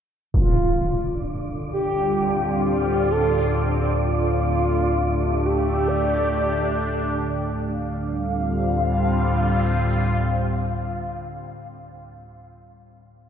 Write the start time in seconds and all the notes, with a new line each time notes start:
0.32 D2 A2 D3 F4, impact
0.37 D4 D5
1.45 F4
1.73 G3 G4
1.91 C4
2.65 G4
3.11 A4
4.04 F4
4.18 A3
5.12 D4 G4
5.45 G4
5.88 D5
7.71 D2 A2 D3 F5
7.89 G3
8.03 C4
8.14 F4